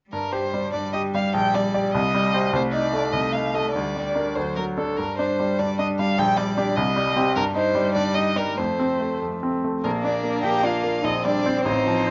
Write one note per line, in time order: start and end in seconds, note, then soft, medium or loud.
0.10 0.72 G2 soft
0.10 2.48 G3 soft
0.10 0.34 A#4 soft
0.32 0.65 G4 soft
0.32 0.72 C5 soft
0.54 0.86 G3 soft
0.73 1.32 G2 soft
0.73 0.92 D5 soft
0.93 1.26 G4 soft
0.93 1.01 D#5 soft
1.15 1.34 G3 soft
1.15 1.34 F5 medium
1.34 1.92 A#1 soft
1.34 1.56 G5 medium
1.54 1.86 G3 soft
1.54 1.94 D5 medium
1.74 1.92 G4 soft
1.74 1.92 D5 soft
1.94 2.51 C2 soft
1.94 2.52 D#5 medium
2.15 2.45 G3 soft
2.34 2.51 G4 soft
2.34 2.51 C5 soft
2.53 3.12 C2 medium
2.53 3.72 A3 soft
2.53 2.62 C5 medium
2.73 3.05 D#4 soft
2.73 3.14 D5 medium
2.93 3.25 A3 soft
3.12 3.72 C2 soft
3.12 3.34 D#5 medium
3.32 3.66 D#4 soft
3.32 3.56 F5 soft
3.54 3.74 A3 soft
3.54 3.71 D#5 soft
3.72 4.34 D2 soft
3.72 4.35 G3 soft
3.72 4.36 D5 soft
3.96 4.28 G3 soft
4.15 4.34 D4 soft
4.15 4.34 A#4 soft
4.35 4.96 D2 soft
4.35 4.77 F#3 soft
4.35 4.55 C5 soft
4.56 4.90 F#3 soft
4.56 4.64 A#4 soft
4.77 4.96 D4 soft
4.77 4.96 A4 soft
4.77 4.98 A4 soft
4.97 5.58 G2 soft
4.97 7.32 G3 soft
4.97 5.17 A#4 soft
5.18 5.51 D4 soft
5.18 5.60 C5 soft
5.40 5.71 G3 soft
5.59 6.16 G2 soft
5.59 5.78 D5 soft
5.79 6.10 D4 soft
5.79 5.87 D#5 soft
5.99 6.18 G3 soft
5.99 6.20 F5 medium
6.18 6.75 A#1 soft
6.18 6.38 G5 medium
6.37 6.69 G3 soft
6.37 6.77 D5 medium
6.58 6.75 D4 soft
6.58 6.75 G4 soft
6.76 7.34 C2 soft
6.76 7.34 D#5 medium
6.96 7.28 G3 soft
7.16 7.34 C4 soft
7.16 7.34 G4 soft
7.35 7.94 G2 medium
7.35 8.54 G3 soft
7.35 7.43 A#4 medium
7.55 7.87 D#4 soft
7.55 7.94 C5 medium
7.75 8.08 G3 soft
7.94 8.56 G2 soft
7.94 8.16 D5 medium
8.15 8.50 D#4 soft
8.15 8.38 D#5 medium
8.36 8.58 G3 soft
8.36 8.59 A#4 soft
8.57 9.20 F2 soft
8.57 9.62 A3 soft
8.57 9.21 C5 soft
8.79 9.13 C4 soft
9.00 9.34 A3 soft
9.22 9.83 F2 soft
9.43 9.77 C4 soft
9.64 9.85 A3 soft
9.84 10.42 A#1 soft
9.84 11.01 A#3 soft
9.84 10.05 A#3 soft
9.84 9.92 A#4 soft
10.03 10.46 D4 soft
10.03 10.37 D4 soft
10.03 10.42 D5 soft
10.23 10.56 A#3 soft
10.43 11.02 A#1 soft
10.43 10.65 G4 soft
10.43 10.66 G5 medium
10.63 10.96 D4 soft
10.63 11.02 F4 soft
10.63 11.06 F5 soft
10.84 11.04 A#3 soft
11.03 11.63 A#1 soft
11.03 11.67 C4 soft
11.03 11.11 D#4 soft
11.03 11.25 D#5 soft
11.24 11.57 G3 soft
11.24 11.64 D4 soft
11.24 11.63 D5 medium
11.46 11.64 C4 soft
11.46 11.64 C5 soft
11.64 12.11 A1 soft
11.64 12.11 C4 medium
11.64 12.11 D#4 soft
11.64 12.11 C5 medium
11.86 12.11 F3 soft
12.07 12.11 D#4 soft
12.07 12.11 C5 soft